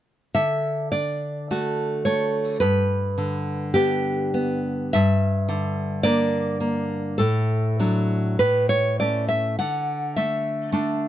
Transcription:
0.35 D3 E5
0.92 D4 D5
1.51 A3 F#4
2.05 A3 C#5
2.60 G2 B4
3.18 D3
3.74 B3 D4 G4
4.34 B3
4.93 G2 E5
5.49 D3
6.03 A#3 D4 D5
6.60 A#3
7.18 A2 A4
7.80 F#3 D4
8.39 A2 B4
8.69 C#5
9.00 A3 C#4 D5
9.29 E5
9.59 D3 F#5
10.16 A3 E5
10.72 A3 D4

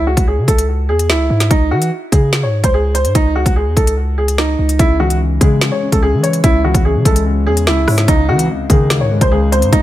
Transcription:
Already playing: C#2
0.07 F#4
0.17 C#2, kick, closed hi-hat
0.28 G#4
0.38 C#3
0.48 C#2 A4, kick, closed hi-hat
0.58 closed hi-hat
0.89 E2 G#4
0.99 closed hi-hat
1.09 C#2 E4, snare
1.30 G#2
1.40 snare, closed hi-hat
1.50 C#2 D#4, kick, closed hi-hat
1.71 E3 F#4
1.82 closed hi-hat
2.12 C#3 G#4, kick, closed hi-hat
2.33 snare, closed hi-hat
2.43 G#2 C#5
2.64 C#2 C5, kick, closed hi-hat
2.74 G#4
2.95 C5, closed hi-hat
3.05 G#2, closed hi-hat
3.15 C#2 D#4, kick, closed hi-hat
3.35 F#4
3.46 C#2, kick, closed hi-hat
3.56 G#4
3.66 E2
3.77 C#2 A4, kick, closed hi-hat
3.87 closed hi-hat
4.18 G#4
4.28 closed hi-hat
4.38 D#4, snare
4.59 C#2
4.69 closed hi-hat
4.79 C#2 C#3 E4, kick, closed hi-hat
5.00 E3 F#4
5.10 closed hi-hat
5.20 C#3
5.41 C#3 G#3 G#4, kick, closed hi-hat
5.61 C#3, snare, closed hi-hat
5.72 C#5
5.82 C#4
5.92 C#2 A4, kick, closed hi-hat
6.03 C#3 G#4
6.13 E3
6.23 C#5, closed hi-hat
6.33 closed hi-hat
6.44 C#2 C#3 E4, kick, closed hi-hat
6.64 E3 F#4
6.74 C#2, kick, closed hi-hat
6.85 C#3 G#4
6.95 C#3
7.05 C#2 G#3 A4, kick, closed hi-hat
7.16 closed hi-hat
7.26 C#3
7.46 E2 C#4 G#4
7.57 closed hi-hat
7.67 C#2 C#3 E4, snare
7.87 G#2 C#5, cross-stick, open hi-hat
7.98 snare, closed hi-hat
8.08 C#2 D#4, kick, closed hi-hat
8.29 E3 C4 F#4
8.39 closed hi-hat
8.49 C#2
8.70 C#3 D#3 G#4, kick, closed hi-hat
8.90 C#2, snare, closed hi-hat
9.01 G#2 C#5
9.11 G#3
9.21 C#2 C5, kick, closed hi-hat
9.31 C#2 G#4
9.52 C4 C5, closed hi-hat
9.62 G#2, closed hi-hat
9.73 C#2 D#4, kick, closed hi-hat

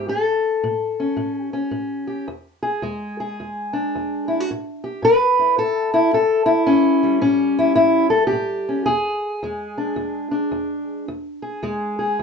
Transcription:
0.08 A2 A4
0.63 A2
1.00 C#4
1.17 A2
1.41 G4
1.53 C#4
1.71 A2
2.07 G4
2.28 E2
2.62 G#4
2.82 E2 G#3
3.20 G#4
3.40 E2
3.73 D4
3.95 E2
4.28 E4
4.40 F#4
4.51 A2
4.84 G4
5.02 A2 B4
5.39 E4
5.58 A2 A4
5.94 E4
6.13 A2 A4
6.46 E4
6.66 A2 C#4
7.03 G3
7.21 A2 C#4
7.59 E4
7.75 A2 E4
8.10 A4
8.27 G4
8.32 A2
8.69 C#4
8.86 E2 G#4
9.43 E2 G#3
9.78 D4
9.96 E2
10.31 D4
10.52 E2
11.08 E2
11.42 G#4
11.63 E2 G#3
11.99 G#4
12.19 E2

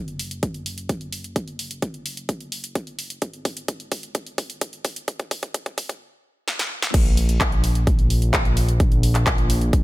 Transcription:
Already playing: F#1
0.08 closed hi-hat
0.19 open hi-hat
0.31 closed hi-hat
0.43 kick, closed hi-hat
0.54 closed hi-hat
0.66 open hi-hat
0.78 closed hi-hat
0.89 kick, closed hi-hat
1.01 closed hi-hat
1.13 open hi-hat
1.24 closed hi-hat
1.36 kick, closed hi-hat
1.48 closed hi-hat
1.59 open hi-hat
1.71 closed hi-hat
1.82 kick, closed hi-hat
1.94 closed hi-hat
2.06 open hi-hat
2.17 closed hi-hat
2.29 kick, closed hi-hat
2.41 closed hi-hat
2.52 open hi-hat
2.64 closed hi-hat
2.75 kick, closed hi-hat
2.87 closed hi-hat
2.99 open hi-hat
3.10 closed hi-hat
3.22 G#1, kick, closed hi-hat
3.33 closed hi-hat
3.45 kick, open hi-hat
3.57 closed hi-hat
3.68 kick, closed hi-hat
3.80 closed hi-hat
3.92 kick, open hi-hat
4.03 closed hi-hat
4.15 kick, closed hi-hat
4.27 closed hi-hat
4.38 kick, open hi-hat
4.50 closed hi-hat
4.61 kick, closed hi-hat
4.73 closed hi-hat
4.85 kick, open hi-hat
4.96 closed hi-hat
5.08 kick, closed hi-hat
5.19 kick, closed hi-hat
5.31 kick, open hi-hat
5.43 kick, closed hi-hat
5.54 kick, closed hi-hat
5.66 kick, closed hi-hat
5.78 kick, open hi-hat
5.89 kick, closed hi-hat
6.48 snare
6.59 snare
6.82 snare
6.94 A#1, kick, closed hi-hat, crash
7.06 closed hi-hat
7.17 open hi-hat
7.29 closed hi-hat
7.41 kick, clap, closed hi-hat
7.52 closed hi-hat
7.64 open hi-hat
7.75 closed hi-hat
7.87 kick, closed hi-hat
7.99 closed hi-hat
8.10 open hi-hat
8.22 closed hi-hat
8.34 kick, clap, closed hi-hat
8.45 closed hi-hat
8.57 open hi-hat
8.69 closed hi-hat
8.80 kick, closed hi-hat
8.92 closed hi-hat
9.03 open hi-hat
9.15 clap, closed hi-hat
9.27 kick, clap, closed hi-hat
9.38 closed hi-hat
9.50 open hi-hat
9.61 closed hi-hat
9.73 kick, closed hi-hat

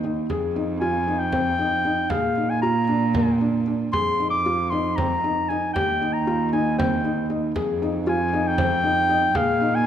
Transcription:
Already playing: D#2
0.04 D#4
0.30 F2 G#4, frame drum
0.56 D#4
0.81 F4 G#5, frame drum
1.08 D#4
1.19 G5
1.32 C4, frame drum
1.59 D#4
1.85 D#4
2.10 A#2 G#4 F5, frame drum
2.38 D#4
2.50 G#5
2.62 F4 A#5
2.89 D4, frame drum
3.14 A#3, frame drum
3.41 D4
3.67 D4
3.93 F2 G#4 C6, frame drum
4.20 D#4
4.30 D6
4.46 F4, frame drum
4.70 D#4 C6
4.96 C4 A#5, frame drum
5.24 D#4
5.49 D#4 G#5
5.74 D#2 G4 G5, frame drum
6.01 D#4
6.13 A#5
6.27 F4, frame drum
6.53 D#4 G#5
6.78 C4 G5, frame drum
7.04 D#4
7.30 D#4
7.56 F2 G#4, frame drum
7.82 D#4
8.07 F4 G#5, frame drum
8.34 D#4
8.47 G5
8.58 C4, frame drum
8.84 D#4
9.09 D#4
9.35 A#2 G#4 F5, frame drum
9.61 D#4
9.75 G#5

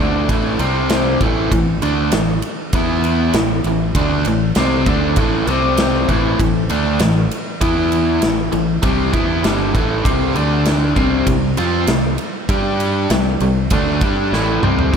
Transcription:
0.00 D2 D3 A3 D4
0.29 A1 A2 E3 A3, kick, ride
0.59 C2 C3 G3 C4, ride
0.90 snare, ride
1.21 A1 A2 E3 A3, kick, ride
1.51 A1 A2 E3, kick, ride
1.82 D2 D3 A3 D4, ride
2.12 A1 A2 E3, snare, ride
2.42 ride
2.73 E2 E3 B3 E4, kick, ride
3.04 ride
3.33 A1 A2 E3, snare, ride
3.64 A1 A2 E3, ride
3.95 D2 D3 A3 D4, kick, ride
4.25 A1 A2 E3, ride
4.55 C2 C3 G3 C4, snare, ride
4.86 D2 D3 A3 D4, kick, ride
5.16 A1 A2 E3 A3, kick, ride
5.47 C2 C3 G3 C4, ride
5.77 snare, ride
6.09 A1 A2 E3 A3, kick, ride
6.39 A1 A2 E3, kick, ride
6.70 D2 D3 A3 D4, ride
6.99 A1 A2 E3, snare, ride
7.31 ride
7.61 E2 E3 B3 E4, kick, ride
7.92 ride
8.22 A1 A2 E3, snare, ride
8.52 A1 A2 E3, ride
8.83 C2 C3 G3 C4, kick, ride
9.13 E2 E3 B3 E4, kick, ride
9.43 G1 G2 D3 G3, snare, ride
9.74 A1 A2 E3 A3, kick, ride
10.04 C2 C3 G3 C4, kick, ride
10.35 D2 D3 A3 D4, ride
10.66 snare, ride
10.96 C2 C3 G3 C4, kick, ride
11.27 C2 C3 G3, kick, ride
11.57 F2 F3 C4 F4, ride
11.87 C2 C3 G3, snare, ride
12.18 ride
12.49 G2 G3 D4 G4, kick, ride
12.80 ride
13.10 C2 C3 G3, snare, ride
13.40 C2 C3 G3, ride
13.70 D2 D3 A3 D4, kick, ride
14.01 G2 G3 D4 G4, kick, ride
14.32 A1 A2 E3 A3, snare
14.63 C2 C3 G3 C4, mid tom
14.79 floor tom
14.93 A1 A2 E3, kick

